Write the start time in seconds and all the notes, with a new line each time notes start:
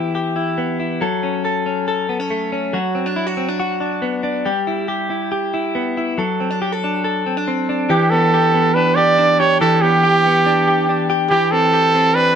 Already playing: E3 B3 E4 G4
0.15 G4
0.36 E4
0.58 B3
0.80 E4
1.01 F#3 A4
1.23 C#4
1.45 A4
1.66 C#4
1.88 A4
2.09 B3
2.20 C#4
2.30 A3
2.52 C#4
2.73 F#3 F#4
2.95 C4
3.06 D4
3.16 E4
3.27 F#4
3.37 C4
3.48 D4
3.60 F#4
3.80 D4
4.02 B3
4.23 D4
4.45 G3 G4
4.67 E4
4.88 G4
5.10 E4
5.32 G4
5.54 E4
5.75 B3
5.97 E4
6.18 F#3 A4
6.40 C4
6.50 D4
6.62 G4
6.72 A4
6.84 D4
7.04 A4
7.26 C4
7.37 D4
7.48 C4
7.69 D4
7.89 E3 G4
8.10 B3 A4
8.34 G4
8.54 B3
8.74 D4 B4
8.95 G4 D5
9.18 D4
9.39 G4 C#5
9.61 E3 G4 A4
9.82 B3 G4
10.03 G4
10.26 B3
10.46 D4
10.68 G4
10.89 D4
11.10 G4
11.30 E3 G4
11.52 C4 A4
11.73 G4
11.94 C4
12.15 D4 B4